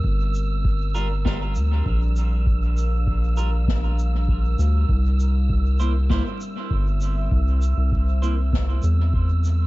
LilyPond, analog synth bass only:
\new Staff \with { instrumentName = "Analog synth bass" } { \clef bass \time 4/4 \key g \dorian \tempo 4 = 99 g,,2~ g,,8 d,8 bes,,4~ | bes,,2.~ bes,,8 d,8 | c,2~ c,16 r8. g,,4 | c,8. c,4.~ c,16 e,4. | }